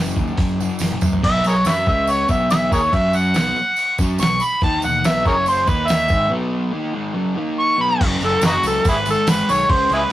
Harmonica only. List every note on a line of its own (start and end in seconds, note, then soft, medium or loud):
1.25 1.45 E5 loud
1.47 1.55 G#4 medium
1.47 1.54 A#4 medium
1.47 1.66 C#5 medium
1.67 1.75 B4 medium
1.67 1.73 C#5 medium
1.67 1.87 E5 medium
1.88 2.11 E5 medium
2.10 2.29 C#5 medium
2.30 2.50 E5 medium
2.51 2.71 E5 medium
2.73 2.81 G#4 medium
2.73 2.79 A#4 medium
2.73 2.96 C#5 medium
2.94 3.17 E5 medium
3.16 3.97 F#5 loud
4.21 4.45 C#6 medium
4.43 4.63 B5 medium
4.64 4.84 A5 loud
4.84 5.08 F#5 medium
5.06 5.26 E5 loud
5.27 5.36 G#4 medium
5.27 5.36 A#4 medium
5.27 5.47 C#5 medium
5.48 5.70 C5 medium
5.68 5.89 B4 loud
5.87 6.29 E5 loud
7.60 7.80 C#6 loud
7.81 8.01 B5 loud
8.25 8.44 A4 loud
8.45 8.52 B3 medium
8.45 8.54 D#4 medium
8.45 8.64 F#4 medium
8.67 8.86 A4 loud
8.89 8.97 E4 medium
8.89 8.96 G#4 medium
8.89 9.07 B4 medium
9.10 9.29 A4 medium
9.30 9.53 B4 medium
9.51 9.72 C#5 medium
9.71 9.90 C5 loud
9.93 10.01 E4 medium
9.93 10.01 G#4 medium
9.93 10.12 B4 medium